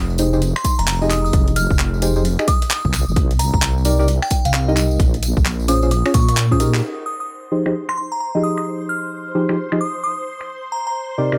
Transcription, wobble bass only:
Already playing: F1
0.79 F1
1.33 F1
1.71 F1
2.85 C2
3.08 G1
3.16 C2
3.54 C2
4.45 C2
5.00 A#1
5.37 A#1
6.14 A#2

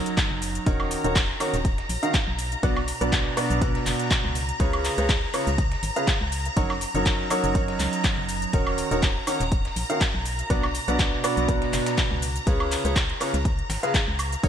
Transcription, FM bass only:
0.31 F#1
0.66 D#1
1.04 D#1
1.54 D#1
1.89 A#1
2.27 B1
2.63 B1
3.01 B1
3.50 B1
3.86 F#1
4.24 C#2
4.60 C#2
4.98 C#2
5.47 C#2
5.83 G#1
6.21 C#2
6.57 F#1
6.95 F#1
7.44 F#1
7.80 C#2
8.18 F#1
8.53 D#1
8.91 D#1
9.40 D#1
9.76 A#1
10.14 B1
10.50 B1
10.88 B1
11.37 B1
11.73 F#1
12.11 C#2
12.47 C#2
12.85 C#2
13.34 C#2
13.70 G#1
14.08 C#2
14.43 F#1

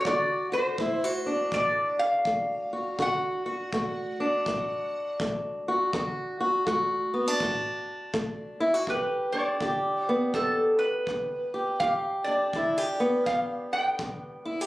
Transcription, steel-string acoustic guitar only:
Already playing: D4
0.07 D3 F#4
0.52 F#4
0.79 A3 E4
1.04 F#4
1.26 D4
1.54 A2
2.27 A3
2.73 F#4
2.99 D3 F#4
3.46 F#4
3.74 A3 F#4
4.20 D4
4.48 A2
5.21 A3
5.68 F#4
5.94 D3 F#4
6.40 F#4
6.66 A3 F#4
7.14 B3
7.28 D4
7.42 A2
8.14 A3
8.60 E4
8.74 F#4
8.88 G2 G4
9.33 D4
9.61 D3 G4
10.09 B3
10.35 G2
11.09 D3
11.54 G4
11.82 G2 G4
12.28 D4
12.56 D3 E4
12.78 G4
13.00 B3
13.27 G2
13.99 D3
14.45 E4
14.61 G4

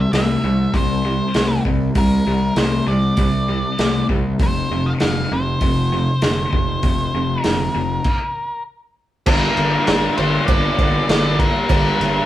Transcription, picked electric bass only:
0.13 C2
0.44 C2
0.74 C2
1.35 C2
1.65 C2
1.96 C2
2.27 C2
2.56 C2
2.87 C2
3.17 C2
3.79 C2
4.09 C2
4.39 F1
4.71 F1
5.02 F1
5.32 F1
5.62 F1
6.23 F1
6.53 F1
6.83 F1
7.14 F1
7.45 F1
7.76 F1
9.27 G1
9.58 G1
9.88 G1
10.19 G1
10.49 G1
10.78 G1
11.09 G1
11.70 G1
12.00 G1

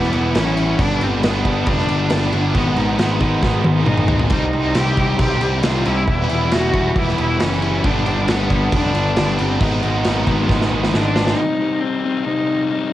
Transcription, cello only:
Already playing: B3
0.37 C#4
0.81 D4
1.03 C4
1.16 G#3
1.25 B3
1.69 D4
2.55 B3
2.99 B3
3.21 B3
3.86 D#4
4.33 D#4
4.77 G4
5.21 G4
5.66 F4
5.87 E4
6.32 E4
6.52 F#4
6.98 E4
7.19 E4
7.41 C#4
7.85 D4
8.30 B3
8.75 D4
9.40 C4
9.61 B3
10.93 D4
11.36 D#4
11.80 C4
12.25 D#4

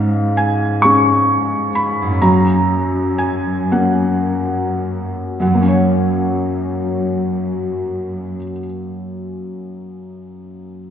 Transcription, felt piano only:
Already playing: G#2 F5
0.37 G#5
0.82 G#3 C#4 C#6
1.75 B5
2.22 F#2 A#5
3.18 G#5
3.72 A#3 C#4 F#5
5.40 F#2 F#5
5.47 F#3
5.54 A#3
5.62 C#4
5.68 C#5

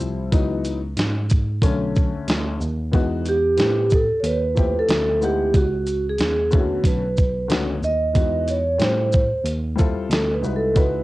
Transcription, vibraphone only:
3.29 G4
3.94 A4
4.20 C#5
4.26 B4
4.79 A4
5.24 G4
5.57 F#4
6.09 G#4
6.54 F#4
6.86 B4
7.84 D#5
8.50 C#5
8.83 C5
10.12 A4
10.34 B4
10.56 A4
10.78 B4

